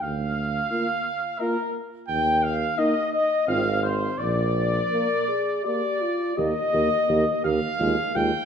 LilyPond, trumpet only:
\new Staff \with { instrumentName = "Trumpet" } { \time 3/4 \key ees \major \tempo 4 = 85 f''2 bes'8 r8 | g''8 f''8 ees''8 ees''8 f''8 c''8 | d''2 d''4 | ees''4. f''4 g''8 | }